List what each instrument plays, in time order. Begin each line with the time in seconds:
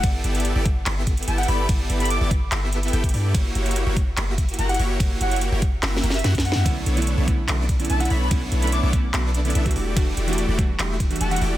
0.03 808-style bass G1, supersaw synth B3 E4 G4 A4 D5, kick, closed hi-hat, ride
0.24 808-style bass G1, supersaw synth B3 E4 G4 A4 D5, closed hi-hat
0.35 closed hi-hat
0.40 closed hi-hat
0.45 closed hi-hat
0.56 808-style bass G1, supersaw synth B3 E4 G4 A4 D5
0.65 kick, closed hi-hat
0.86 808-style bass G1, supersaw synth B3 E4 G4 A4 E5, clap, closed hi-hat, ride
1.07 kick, closed hi-hat
1.17 closed hi-hat
1.23 closed hi-hat
1.28 808-style bass G1, supersaw synth B3 E4 G4 A4 G5, soft synth lead A5, closed hi-hat
1.38 soft synth lead F#5, closed hi-hat
1.43 closed hi-hat
1.48 808-style bass G1, supersaw synth B3 E4 G4 A4 D5, soft synth lead B5, open hi-hat
1.59 soft synth lead B5
1.69 808-style bass G1, supersaw synth B3 E4 G4 A4 D5, kick, closed hi-hat, ride
1.90 808-style bass G1, supersaw synth B3 E4 G4 A4 D5, closed hi-hat
2.00 soft synth lead B5, closed hi-hat
2.05 closed hi-hat
2.10 soft synth lead D6, closed hi-hat
2.21 808-style bass G1, supersaw synth B3 E4 G4 A4 D5, soft synth lead D6
2.31 kick, closed hi-hat
2.52 808-style bass G1, supersaw synth B3 E4 G4 A4 E5, clap, closed hi-hat, ride
2.73 closed hi-hat
2.83 closed hi-hat
2.88 closed hi-hat
2.93 808-style bass G1, supersaw synth B3 E4 G4 A4 G5, closed hi-hat
3.04 kick, closed hi-hat
3.09 closed hi-hat
3.14 808-style bass G2, supersaw synth B3 E4 G4 A4 D5, open hi-hat
3.34 808-style bass F#1, supersaw synth A#3 E4 F#4 G4 C#5, kick, closed hi-hat, ride
3.55 808-style bass F#1, supersaw synth A#3 E4 F#4 G4 C#5, closed hi-hat
3.66 closed hi-hat
3.71 closed hi-hat
3.76 closed hi-hat
3.87 808-style bass F#1, supersaw synth A#3 E4 F#4 G4 C#5
3.97 kick, closed hi-hat
4.17 808-style bass F#1, supersaw synth A#3 E4 F#4 G4 E5, clap, closed hi-hat, ride
4.38 kick, closed hi-hat
4.49 closed hi-hat
4.54 closed hi-hat
4.59 808-style bass F#1, supersaw synth A#3 E4 F#4 G4 F#5, soft synth lead A#5, closed hi-hat
4.69 soft synth lead F#5, closed hi-hat
4.74 closed hi-hat
4.79 808-style bass F#1, supersaw synth A#3 E4 F#4 G4 C#5, open hi-hat
5.00 808-style bass F#1, supersaw synth A#3 F#4 G4 C#5, kick, closed hi-hat, ride
5.21 808-style bass F#1, supersaw synth A#3 E4 F#4 G4 C#5, soft synth lead F#5, closed hi-hat
5.31 soft synth lead F#5, closed hi-hat
5.36 closed hi-hat
5.41 closed hi-hat
5.52 808-style bass F#1, supersaw synth A#3 E4 F#4 G4 C#5
5.62 kick, closed hi-hat
5.83 808-style bass F#1, supersaw synth A#3 E4 F#4 G4 E5, snare, clap, closed hi-hat, ride
5.97 snare
6.03 808-style bass F#1, supersaw synth A#3 E4 F#4 G4 A#4, closed hi-hat
6.10 soft synth lead E5, snare, closed hi-hat
6.19 closed hi-hat
6.24 808-style bass F#2, supersaw synth A#3 E4 F#4 G4 F#5, snare, closed hi-hat
6.35 kick, snare, closed hi-hat
6.40 closed hi-hat
6.45 soft synth lead F#5, open hi-hat
6.52 808-style bass F#2, supersaw synth A#3 E4 F#4 G4 E5, snare
6.65 808-style bass B1, synth keys D3 A3 B3 C#4 E4, supersaw synth B3 D4 E4 A4 C#5, kick, closed hi-hat, ride
6.86 808-style bass B1, supersaw synth B3 D4 E4 A4 C#5, closed hi-hat
6.96 synth keys D3 A3 B3 C#4 E4, closed hi-hat
7.02 closed hi-hat
7.07 closed hi-hat
7.18 808-style bass B1, supersaw synth B3 D4 E4 A4 C#5
7.27 synth keys D3 A3 B3 C#4 E4, kick, closed hi-hat
7.47 808-style bass B1, synth keys D3 A3 B3 C#4 F#4, supersaw synth B3 D4 E4 A4 D5, clap, closed hi-hat, ride
7.69 kick, closed hi-hat
7.79 synth keys D3 A3 B3 C#4 E4, closed hi-hat
7.85 closed hi-hat
7.90 808-style bass B1, supersaw synth B3 D4 E4 A4 E5, soft synth lead A5, closed hi-hat
7.99 synth keys D3 A3 B3 C#4 E4, soft synth lead F#5, closed hi-hat
8.05 closed hi-hat
8.10 808-style bass B1, supersaw synth B3 D4 E4 A4 C#5, soft synth lead B5, open hi-hat
8.21 soft synth lead B5
8.30 808-style bass B1, synth keys D3 A3 B3 C#4 E4, supersaw synth B3 D4 E4 A4 C#5, kick, closed hi-hat, ride
8.52 808-style bass B1, supersaw synth B3 D4 E4 A4 C#5, closed hi-hat
8.61 synth keys D3 A3 B3 C#4 E4, soft synth lead B5, closed hi-hat
8.67 closed hi-hat
8.72 soft synth lead D6, closed hi-hat
8.83 808-style bass B1, supersaw synth B3 D4 E4 A4 C#5, soft synth lead D6
8.92 synth keys D3 A3 B3 C#4 E4, kick, closed hi-hat
9.13 808-style bass B1, synth keys D3 A3 B3 C#4 F#4, supersaw synth B3 D4 E4 A4 D5, clap, closed hi-hat, ride
9.34 closed hi-hat
9.44 synth keys D3 A3 B3 C#4 E4, closed hi-hat
9.50 closed hi-hat
9.55 808-style bass B1, supersaw synth B3 D4 E4 A4 E5, closed hi-hat
9.65 synth keys E3 G3 A3 D4 F#4, kick, closed hi-hat
9.71 closed hi-hat
9.76 808-style bass E1, supersaw synth A3 E4 F#4 G4 D5, open hi-hat
9.96 808-style bass E1, synth keys E3 G3 A3 D4 F#4, supersaw synth F#4 G4, kick, closed hi-hat, ride
10.17 808-style bass E1, supersaw synth A3 E4 F#4 G4 D5, closed hi-hat
10.27 synth keys E3 G3 A3 D4 F#4, closed hi-hat
10.33 closed hi-hat
10.38 closed hi-hat
10.48 808-style bass E1, supersaw synth A3 E4 F#4 G4 D5
10.58 synth keys E3 G3 A3 D4 F#4, kick, closed hi-hat
10.79 808-style bass E1, synth keys E3 G3 A3 D4 G4, supersaw synth A3 E4 F#4 G4 E5, clap, closed hi-hat, ride
11.00 kick, closed hi-hat
11.10 synth keys E3 G3 A3 D4 F#4, closed hi-hat
11.16 closed hi-hat
11.21 808-style bass E1, supersaw synth A3 E4 F#4 G4 F#5, soft synth lead A5, closed hi-hat
11.30 synth keys E3 G3 A3 D4 F#4, soft synth lead F#5, closed hi-hat
11.36 closed hi-hat
11.41 808-style bass E1, supersaw synth A3 E4 F#4 G4 D5, open hi-hat